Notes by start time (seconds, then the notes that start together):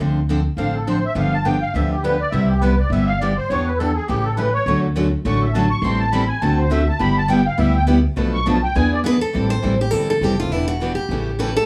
0.00 D2 D3 F3 C4 D4 A4
0.29 D3 F3 C4 D4 A4
0.57 A1 D3 F3 C4 D4 A4 F5
0.75 A4
0.87 D3 F3 C4 D4 A4 C5
1.05 E5
1.15 G1 D3 F3 B3 D4 G4 F5
1.33 A5
1.45 D3 F3 B3 D4 G4 G5
1.61 F5
1.74 D2 D3 F3 B3 D4 G4 E5
1.92 G4
2.03 D3 F3 B3 D4 G4 B4
2.20 D5
2.31 C2 C3 G3 B3 E4 G4 E5
2.49 G4
2.61 C3 G3 B3 E4 G4 B4
2.80 D5
2.90 G1 C3 G3 B3 E4 G4 E5
3.07 F5
3.20 C3 G3 B3 E4 G4 D5
3.37 C5
3.49 E2 E3 B3 D4 G4 C#5
3.66 B4
3.78 E3 B3 D4 G4 A4
3.95 G#4
4.07 A1 C#3 E3 A3 C#4 G4
4.24 A4
4.36 C#3 E3 A3 C#4 G4 B4
4.53 C#5
4.66 D2 D3 F#3 A3 C#4 F#4 A4
4.96 D3 F#3 A3 C#4 F#4 A4
5.25 A1 D3 F#3 A3 C#4 F#4 A4 C#6
5.42 E5
5.54 D3 F#3 A3 C#4 F#4 A4 A5
5.71 C#6
5.81 A1 E3 G3 C4 C6
5.85 E4 A4
5.99 A5
6.12 E3 G3 C4 E4 A4 B5
6.28 G#5
6.41 D2 D3 A3 C4 F#4 A4 A5
6.58 C5
6.71 D3 A3 C4 F#4 A4 E5
6.89 A5
6.99 G1 G3 B3 E4 G4 B5
7.18 A5
7.28 G3 B3 E4 G4 G5
7.46 F5
7.58 D2 G3 B3 E4 G4 E5
7.76 G5
7.87 G3 B3 E4 G4
8.17 B1 B2 F3 A3 D4 A4 B4
8.34 C#6
8.46 B2 F3 A3 D4 A4 B4 A5
8.63 G5
8.75 E2 E3 B3 D4 G#4 B4 G#5
8.93 D5
9.04 E3 B3 D4 G#4 B4
9.21 A4
9.33 A1 E3 G3 C4 E4 A4
9.50 C5
9.62 A1 E3 G3 C4 E4 A4
9.81 G4
9.91 G1 E3 G3 C4 E4 A4
10.10 A4
10.21 F1 E3 G3 C4 E4 G4 A4
10.40 C4 E4 F4 A4
10.49 E1 E3 G3 D4 E4 B4
10.53 B3 G4
10.68 F#4
10.80 E3 G3 B3 D4 E4 G4 B4
10.95 G4
11.09 A1 C#3 E3 G3 A3 C#4 E4 G4 A4
11.39 C#3 E3 G3 A3 C#4 E4 G4 A4 B4
11.56 A3 C#4 G4 A4